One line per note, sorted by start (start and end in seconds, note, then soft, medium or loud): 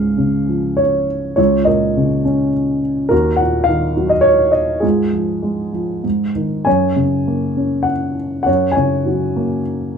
0.00 1.34 C#2 soft
0.00 1.05 G#2 soft
0.00 0.74 G#4 soft
0.00 0.81 F5 medium
0.17 1.34 C#3 soft
0.48 1.35 F3 soft
0.77 1.33 C#5 medium
1.36 3.07 C#2 soft
1.36 2.21 F4 soft
1.36 1.67 C#5 medium
1.65 2.79 A#2 soft
1.65 2.50 A#4 soft
1.65 2.49 D#5 medium
1.97 3.08 C#3 soft
2.25 3.08 C#4 soft
3.09 4.79 D#2 soft
3.09 3.92 F#4 medium
3.09 3.40 A#4 medium
3.37 4.51 A#2 soft
3.37 3.68 F#5 medium
3.64 4.10 F5 medium
3.68 4.80 D#3 soft
3.97 4.81 F#3 soft
4.09 4.25 D#5 medium
4.21 4.50 C#5 medium
4.52 4.83 D#5 medium
4.80 6.00 G#2 soft
4.80 6.31 F4 soft
4.80 6.30 G#4 medium
5.13 5.71 F3 soft
5.42 6.02 G#3 soft
5.73 6.03 F3 soft
6.04 6.64 G#2 soft
6.35 6.65 D#3 soft
6.65 8.44 F#2 soft
6.65 7.84 C#5 soft
6.65 7.91 G#5 medium
6.96 8.14 C#3 soft
7.27 8.44 A#3 soft
7.57 8.44 C#4 soft
7.83 8.41 F#5 medium
8.43 9.98 F#2 soft
8.43 8.74 C#5 soft
8.43 8.76 F#5 medium
8.72 9.62 C#5 soft
8.72 9.60 G#5 medium
8.77 9.92 C#3 soft
9.06 9.98 F#3 soft
9.36 9.98 A#3 soft